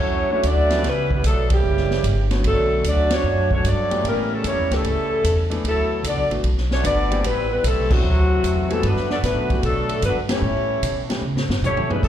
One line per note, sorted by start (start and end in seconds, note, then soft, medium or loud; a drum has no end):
0.00 0.28 E2 medium
0.00 0.30 F#3 medium
0.00 0.31 A3 medium
0.00 0.31 C#4 medium
0.00 0.31 E4 loud
0.00 0.31 F#4 medium
0.00 0.31 C#5 loud
0.30 0.42 E3 medium
0.30 0.43 F#3 medium
0.30 0.43 A3 medium
0.30 0.44 A3 medium
0.30 0.43 C#4 medium
0.30 0.44 C#4 medium
0.30 0.43 D4 medium
0.30 0.44 E4 medium
0.30 0.43 F#4 medium
0.30 0.44 F#4 medium
0.30 0.44 C#5 medium
0.30 muted upright bass stroke soft
0.43 0.82 D2 medium
0.43 0.85 F#3 medium
0.43 0.85 A3 medium
0.43 0.85 A3 loud
0.43 0.84 D4 medium
0.43 0.85 E4 medium
0.43 0.85 F#4 loud
0.43 0.85 D5 loud
0.43 kick soft
0.43 hi-hat pedal soft
0.43 ride medium
0.70 0.83 E3 medium
0.70 0.83 G3 medium
0.70 0.83 B3 medium
0.70 0.83 C#4 medium
0.70 0.83 E4 medium
0.70 snare medium
0.70 ride soft
0.83 1.22 C#2 medium
0.83 1.11 E3 medium
0.83 1.11 G3 medium
0.83 1.12 G3 medium
0.83 1.11 B3 medium
0.83 1.12 C#4 medium
0.83 1.12 E4 medium
0.83 kick soft
0.83 snare soft
0.83 ride medium
0.87 1.12 B4 loud
1.11 1.24 E3 medium
1.11 1.24 G3 medium
1.11 1.25 G3 medium
1.11 1.24 B3 medium
1.11 1.25 C#4 medium
1.11 1.25 B4 medium
1.11 kick medium
1.15 1.25 E4 medium
1.23 1.63 B1 medium
1.23 1.50 F#3 medium
1.23 1.49 A3 medium
1.23 1.50 B3 medium
1.23 1.51 D4 medium
1.23 1.50 A4 medium
1.23 kick soft
1.23 hi-hat pedal medium
1.23 ride medium
1.50 2.31 C#3 medium
1.50 2.31 E3 medium
1.50 2.30 G3 medium
1.50 2.32 A#3 medium
1.50 kick medium
1.50 ride medium
1.54 2.32 E3 medium
1.54 2.32 C#4 medium
1.54 2.32 G4 loud
1.63 2.03 F#1 medium
1.63 kick soft
1.77 snare soft
1.91 snare soft
2.04 2.43 G1 loud
2.04 kick soft
2.04 hi-hat pedal medium
2.04 ride medium
2.31 2.81 D3 medium
2.31 2.82 A3 medium
2.31 2.82 B3 medium
2.31 2.82 F#4 medium
2.31 2.82 C#5 medium
2.31 snare soft
2.31 ride medium
2.44 2.83 B1 medium
2.44 2.82 D3 medium
2.44 2.82 F#3 medium
2.44 2.82 A3 medium
2.44 2.83 C#4 medium
2.44 2.83 A4 loud
2.44 kick soft
2.44 ride medium
2.48 2.83 F#3 medium
2.48 2.83 D4 medium
2.84 3.23 D2 medium
2.84 3.11 F#3 medium
2.84 3.12 A3 medium
2.84 3.12 D4 medium
2.84 kick soft
2.84 hi-hat pedal medium
2.84 ride medium
2.88 3.13 A3 medium
2.88 3.13 C#4 medium
2.88 3.13 F#4 medium
2.88 3.13 D5 loud
3.10 3.51 F#3 medium
3.10 3.51 A3 medium
3.10 3.52 D4 medium
3.10 3.53 F#4 medium
3.10 snare medium
3.10 ride medium
3.15 3.53 A3 medium
3.15 3.53 D4 medium
3.15 3.53 C#5 loud
3.24 3.63 F#2 medium
3.51 3.63 F#3 medium
3.51 3.63 A3 medium
3.51 3.65 A3 medium
3.51 3.64 C#4 medium
3.51 3.65 D4 medium
3.51 3.65 F#4 medium
3.51 3.65 C#5 medium
3.51 kick medium
3.64 4.03 G2 medium
3.64 4.04 F#3 medium
3.64 4.04 A3 medium
3.64 4.06 A3 loud
3.64 4.04 D4 medium
3.64 4.05 F#4 loud
3.64 4.05 C#5 loud
3.64 4.06 D5 loud
3.64 kick soft
3.64 hi-hat pedal medium
3.64 ride medium
3.91 4.42 E3 medium
3.91 4.42 A3 medium
3.91 4.41 B3 medium
3.91 4.42 C#4 medium
3.91 4.42 G4 medium
3.91 ride medium
4.04 4.43 A2 medium
4.04 4.29 E3 medium
4.04 4.29 G3 medium
4.04 4.29 A#3 medium
4.04 kick soft
4.04 ride medium
4.08 4.31 G3 medium
4.08 4.31 C#4 medium
4.08 4.31 E4 medium
4.08 4.31 A#4 loud
4.32 4.45 C#3 medium
4.32 4.44 E3 medium
4.32 4.46 G3 medium
4.32 4.45 A3 medium
4.32 4.46 C#4 medium
4.32 4.46 E4 medium
4.32 4.46 A4 medium
4.44 4.57 F#2 medium
4.44 4.69 E3 medium
4.44 4.69 G3 medium
4.44 4.70 C#4 medium
4.44 4.71 C#5 medium
4.44 kick soft
4.44 hi-hat pedal soft
4.44 ride medium
4.48 4.71 A#3 medium
4.48 4.71 E4 medium
4.48 4.71 G4 medium
4.57 4.70 E2 medium
4.70 4.83 C#2 medium
4.70 5.51 C#3 medium
4.70 4.83 E3 medium
4.70 5.52 E3 medium
4.70 5.53 G3 medium
4.70 4.83 A3 medium
4.70 5.52 A3 medium
4.70 4.83 A#3 medium
4.70 4.83 C#4 medium
4.70 5.52 C#4 medium
4.70 5.52 E4 medium
4.70 4.83 G4 medium
4.70 5.52 A4 loud
4.70 snare soft
4.70 ride medium
4.84 5.23 G2 medium
4.84 kick soft
4.84 ride medium
5.24 5.63 E2 medium
5.24 kick soft
5.24 hi-hat pedal medium
5.24 ride medium
5.50 5.62 E3 medium
5.50 5.63 A3 medium
5.50 5.63 B3 medium
5.50 5.62 D4 medium
5.50 5.63 A4 medium
5.50 ride soft
5.64 6.03 D2 medium
5.64 6.02 B2 medium
5.64 6.02 F#3 medium
5.64 6.03 F#3 medium
5.64 6.03 A3 medium
5.64 6.03 B3 medium
5.64 6.03 E4 medium
5.64 6.03 A4 medium
5.64 kick soft
5.64 ride medium
6.04 6.17 C#2 medium
6.04 6.29 A3 medium
6.04 6.29 B3 medium
6.04 6.30 B3 medium
6.04 6.29 D4 medium
6.04 6.30 F#4 medium
6.04 6.31 A4 medium
6.04 6.30 D5 medium
6.04 kick soft
6.04 hi-hat pedal medium
6.04 ride medium
6.17 6.29 B1 medium
6.30 6.43 A1 medium
6.30 6.43 E3 medium
6.30 6.43 A3 medium
6.30 6.43 B3 soft
6.30 6.43 D4 medium
6.30 6.43 F#4 medium
6.30 ride soft
6.44 6.83 B1 medium
6.44 kick soft
6.44 ride medium
6.58 snare soft
6.70 6.84 A3 medium
6.70 6.83 C#4 medium
6.70 6.85 D4 medium
6.70 6.84 F#4 medium
6.70 6.85 C#5 medium
6.70 snare soft
6.83 7.23 G1 loud
6.83 7.21 A3 medium
6.83 7.21 B3 medium
6.83 7.22 B3 loud
6.83 7.21 D4 medium
6.83 7.22 F#4 medium
6.83 7.22 A4 medium
6.83 7.22 D5 loud
6.83 kick soft
6.83 hi-hat pedal medium
6.83 ride medium
7.10 7.23 E3 medium
7.10 7.23 A3 medium
7.10 7.23 B3 medium
7.10 7.23 C4 medium
7.10 7.23 G4 medium
7.10 ride medium
7.23 7.63 A1 medium
7.23 7.49 E3 medium
7.23 7.49 G3 medium
7.23 7.52 G3 medium
7.23 7.49 B3 medium
7.23 7.51 C4 medium
7.23 7.51 E4 medium
7.23 7.51 B4 loud
7.23 kick soft
7.23 ride medium
7.50 7.63 E3 medium
7.50 7.63 G3 medium
7.50 7.64 G3 medium
7.50 7.63 B3 medium
7.50 7.64 C4 medium
7.50 7.64 E4 medium
7.50 7.64 B4 loud
7.63 8.03 B1 loud
7.63 7.90 C3 medium
7.63 7.91 E3 medium
7.63 7.92 G3 medium
7.63 7.91 A3 medium
7.63 7.91 C4 medium
7.63 7.92 E4 medium
7.63 7.92 A4 loud
7.63 kick soft
7.63 hi-hat pedal medium
7.63 ride medium
7.90 8.70 A2 medium
7.90 8.69 C3 medium
7.90 8.03 E3 medium
7.90 8.71 E3 medium
7.90 8.70 F#3 loud
7.90 8.71 A3 medium
7.90 8.03 B3 medium
7.90 8.03 C4 medium
7.90 8.71 C4 loud
7.90 8.03 D4 medium
7.90 8.03 F#4 medium
7.90 8.71 F#4 loud
7.90 kick medium
7.90 crash medium
8.03 8.42 D2 medium
8.44 8.82 E2 medium
8.44 kick soft
8.44 hi-hat pedal medium
8.44 ride medium
8.70 8.84 C3 medium
8.70 8.82 E3 medium
8.70 8.82 F#3 medium
8.70 8.85 F#3 medium
8.70 8.82 G3 medium
8.70 8.82 A3 medium
8.70 8.84 A3 medium
8.70 8.82 B3 medium
8.70 8.85 C4 medium
8.70 8.85 E4 medium
8.70 8.82 F#4 medium
8.70 8.85 A4 loud
8.70 ride soft
8.83 9.22 G2 medium
8.83 9.08 D3 medium
8.83 9.08 F#3 medium
8.83 9.08 B3 medium
8.83 kick soft
8.83 ride medium
8.87 9.10 A3 medium
8.87 9.10 D4 medium
8.87 9.10 F#4 medium
8.87 9.10 B4 loud
8.96 snare soft
9.10 9.17 F#3 medium
9.10 9.17 B3 medium
9.10 9.18 B3 medium
9.10 9.16 D4 medium
9.10 9.18 F#4 medium
9.10 9.18 A4 medium
9.10 9.18 D5 medium
9.10 snare soft
9.23 9.48 A2 medium
9.23 9.61 D3 medium
9.23 9.61 F#3 medium
9.23 9.61 A3 medium
9.23 9.61 B3 medium
9.23 9.61 D4 medium
9.23 9.62 F#4 medium
9.23 9.61 B4 loud
9.23 kick soft
9.23 snare soft
9.23 hi-hat pedal medium
9.23 ride medium
9.49 9.61 E3 medium
9.49 9.62 G3 medium
9.49 9.62 A3 medium
9.49 9.62 B3 medium
9.49 9.62 F#4 medium
9.49 muted upright bass stroke soft
9.49 kick medium
9.49 ride soft
9.63 10.02 B2 medium
9.63 10.03 D3 medium
9.63 10.03 F#3 medium
9.63 10.04 F#3 medium
9.63 10.03 A3 medium
9.63 10.04 B3 medium
9.63 10.04 D4 medium
9.63 10.04 A4 loud
9.63 kick soft
9.63 ride medium
9.89 ride medium
10.02 10.41 G2 loud
10.02 10.17 D3 medium
10.02 10.17 F#3 medium
10.02 10.16 B3 medium
10.02 10.17 F#4 medium
10.02 10.17 B4 loud
10.02 kick soft
10.02 hi-hat pedal medium
10.02 ride medium
10.07 10.18 A3 medium
10.07 10.18 D4 medium
10.29 10.42 E3 medium
10.29 11.06 E3 medium
10.29 10.42 G3 medium
10.29 11.06 G3 medium
10.29 10.42 A3 medium
10.29 10.41 C#4 medium
10.29 11.06 C#4 medium
10.29 10.42 G4 medium
10.29 snare medium
10.29 ride medium
10.34 11.08 A3 medium
10.34 11.07 E4 medium
10.34 11.07 G4 medium
10.34 11.08 C#5 medium
10.42 10.81 A2 medium
10.82 11.21 B2 medium
10.82 kick soft
10.82 hi-hat pedal medium
10.82 ride medium
11.09 11.21 E3 medium
11.09 11.21 G3 medium
11.09 11.21 A3 medium
11.09 11.21 C#4 medium
11.09 11.22 G4 medium
11.09 snare soft
11.09 ride medium
11.22 11.35 C#3 medium
11.35 11.48 A2 medium
11.35 snare medium
11.49 11.61 G2 medium
11.49 snare medium
11.62 12.01 B2 loud
11.62 11.88 A3 loud
11.62 11.88 E4 loud
11.62 11.89 G4 loud
11.62 11.89 C#5 loud
11.62 floor tom medium
11.62 hi-hat pedal medium
11.77 floor tom medium
11.89 12.01 E3 medium
11.89 12.04 G3 medium
11.89 12.01 A3 medium
11.89 12.01 B3 medium
11.89 12.01 C#4 medium
11.89 12.03 C#4 medium
11.89 12.04 E4 medium
11.89 12.01 G#4 medium
11.89 12.04 B4 medium
11.89 floor tom medium
12.03 12.08 E2 medium
12.03 12.08 E3 medium
12.03 12.08 B3 medium
12.03 12.08 C#4 medium
12.03 12.08 A4 loud
12.03 kick medium
12.03 crash medium